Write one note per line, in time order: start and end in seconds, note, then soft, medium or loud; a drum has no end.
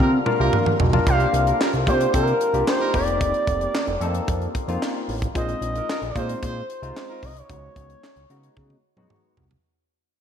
0.00 0.19 C3 loud
0.00 1.05 D3 medium
0.00 1.05 G3 medium
0.00 1.03 A#3 medium
0.00 1.05 C4 medium
0.00 0.11 F4 medium
0.00 1.02 F4 loud
0.00 0.11 G4 medium
0.00 0.11 A#4 medium
0.00 0.50 F6 loud
0.00 kick loud
0.26 0.73 A#3 medium
0.26 0.73 D4 medium
0.26 0.74 F4 medium
0.26 0.74 A#4 loud
0.26 mid tom medium
0.40 0.50 C2 medium
0.40 0.57 F4 loud
0.40 0.57 G4 loud
0.40 0.57 A#4 loud
0.53 mid tom medium
0.66 mid tom medium
0.80 1.00 B1 medium
0.80 floor tom loud
0.93 1.06 A#3 loud
0.93 1.06 D4 medium
0.93 1.06 F4 medium
0.93 1.07 A#4 loud
0.93 floor tom loud
1.06 1.26 C2 loud
1.06 2.92 D3 medium
1.06 2.92 G3 medium
1.06 5.31 A#3 medium
1.06 1.63 A#3 medium
1.06 5.31 C4 medium
1.06 1.63 D4 medium
1.06 5.31 F4 medium
1.06 1.28 F4 medium
1.06 1.64 F4 medium
1.06 1.28 G4 loud
1.06 1.64 G4 medium
1.06 1.28 C5 loud
1.06 1.57 F5 loud
1.06 kick loud
1.06 closed hi-hat medium
1.20 closed hi-hat soft
1.33 1.53 C2 loud
1.33 closed hi-hat medium
1.47 1.57 F4 medium
1.47 1.57 G4 medium
1.47 1.57 A#4 medium
1.47 closed hi-hat soft
1.60 1.71 F4 medium
1.60 1.71 G4 medium
1.60 1.71 A#4 loud
1.60 snare loud
1.60 clap medium
1.73 1.89 C2 medium
1.73 closed hi-hat soft
1.86 2.07 C3 loud
1.86 2.34 A#3 medium
1.86 2.34 D4 medium
1.86 2.08 F4 loud
1.86 2.34 F4 medium
1.86 2.08 G4 loud
1.86 2.34 G4 medium
1.86 2.08 C5 loud
1.86 2.13 C5 medium
1.86 kick medium
1.86 closed hi-hat medium
2.01 closed hi-hat medium
2.13 2.33 C3 loud
2.13 2.35 F4 loud
2.13 2.35 G4 loud
2.13 2.64 A#4 loud
2.13 2.34 C5 loud
2.13 kick loud
2.13 closed hi-hat medium
2.27 closed hi-hat soft
2.41 closed hi-hat medium
2.53 2.63 C2 medium
2.53 2.93 A#3 medium
2.53 2.94 D4 medium
2.53 2.94 F4 medium
2.53 2.94 G4 medium
2.53 closed hi-hat soft
2.67 2.93 C5 loud
2.67 snare loud
2.67 clap medium
2.80 3.02 D#4 loud
2.80 3.02 G4 medium
2.80 3.02 A#4 medium
2.94 3.33 F1 medium
2.94 5.33 D#3 medium
2.94 5.33 G3 medium
2.94 3.80 A#3 medium
2.94 3.80 C4 medium
2.94 3.80 D#4 medium
2.94 3.80 G4 medium
2.94 4.51 D5 loud
2.94 kick medium
2.94 open hi-hat medium
3.08 closed hi-hat medium
3.21 kick loud
3.21 closed hi-hat medium
3.34 closed hi-hat soft
3.47 3.67 F1 loud
3.47 kick loud
3.47 closed hi-hat medium
3.61 closed hi-hat soft
3.75 snare loud
3.75 clap medium
3.87 3.97 F1 loud
3.87 closed hi-hat soft
4.01 4.20 F2 loud
4.01 4.08 A3 medium
4.01 4.48 C4 medium
4.01 4.48 D#4 medium
4.01 4.49 A4 loud
4.01 closed hi-hat medium
4.07 4.51 A#3 medium
4.14 closed hi-hat medium
4.28 4.48 F2 medium
4.28 kick loud
4.28 closed hi-hat medium
4.42 closed hi-hat soft
4.55 kick medium
4.55 closed hi-hat medium
4.68 4.78 F2 loud
4.68 5.15 A#3 loud
4.68 5.15 C4 medium
4.68 5.15 D#4 medium
4.68 5.16 F4 loud
4.68 closed hi-hat soft
4.82 snare loud
4.82 clap medium
5.08 5.28 A1 loud
5.08 open hi-hat medium
5.22 kick loud
5.22 closed hi-hat medium
5.34 5.55 A#1 loud
5.34 5.91 G#3 medium
5.34 5.91 C4 medium
5.34 5.91 D#4 medium
5.34 5.92 F4 medium
5.34 5.57 F4 loud
5.34 5.57 G#4 loud
5.34 5.57 C5 loud
5.34 6.11 D#5 loud
5.34 kick loud
5.34 closed hi-hat medium
5.49 closed hi-hat soft
5.61 5.81 A#1 loud
5.61 closed hi-hat medium
5.75 5.86 D#4 medium
5.75 5.86 F4 medium
5.75 5.86 A#4 medium
5.75 closed hi-hat soft
5.89 6.00 D#4 medium
5.89 6.00 F4 medium
5.89 6.00 A#4 loud
5.89 snare loud
5.89 clap medium
6.02 6.12 A#1 loud
6.02 closed hi-hat soft
6.10 6.19 D5 medium
6.15 6.35 A#2 loud
6.15 6.63 G#3 medium
6.15 6.63 C4 medium
6.15 6.63 D#4 medium
6.15 6.37 F4 loud
6.15 6.63 F4 medium
6.15 6.37 G#4 loud
6.15 6.37 C5 loud
6.15 7.26 C5 loud
6.15 kick medium
6.15 closed hi-hat medium
6.29 closed hi-hat medium
6.42 6.62 A#2 loud
6.42 6.64 F4 loud
6.42 6.64 G#4 medium
6.42 6.64 C5 loud
6.42 kick loud
6.42 closed hi-hat medium
6.70 closed hi-hat medium
6.82 6.92 C2 medium
6.82 7.29 G#3 medium
6.82 7.29 C4 medium
6.82 7.30 D#4 medium
6.82 7.30 F4 loud
6.82 closed hi-hat medium
6.97 snare medium
6.97 clap medium
7.10 7.31 D#4 medium
7.10 7.31 F4 medium
7.10 7.31 A#4 loud
7.23 7.42 C2 medium
7.23 7.39 D#5 loud
7.23 kick medium
7.23 open hi-hat medium
7.36 9.11 C#5 loud
7.36 closed hi-hat medium
7.49 7.69 C#2 loud
7.49 8.06 G#3 medium
7.49 8.06 B3 medium
7.49 8.06 D#4 medium
7.49 8.06 F#4 medium
7.49 kick loud
7.49 closed hi-hat medium
7.76 7.96 C#2 loud
7.76 kick medium
7.76 closed hi-hat medium
7.90 closed hi-hat soft
8.04 snare loud
8.04 clap medium
8.16 8.26 C#2 medium
8.16 closed hi-hat soft
8.30 8.49 C#3 medium
8.30 8.77 G#3 medium
8.30 8.77 B3 medium
8.30 8.77 D#4 medium
8.30 8.78 F#4 loud
8.30 closed hi-hat medium
8.43 closed hi-hat medium
8.57 8.76 C#3 loud
8.57 kick medium
8.57 high tom medium
8.70 high tom soft
8.97 9.06 F#2 loud
8.97 9.44 G#3 loud
8.97 9.44 B3 medium
8.97 9.44 D#4 medium
8.97 9.45 F#4 loud
8.97 mid tom medium
9.10 mid tom medium
9.37 9.56 C2 medium
9.37 floor tom loud
9.51 floor tom loud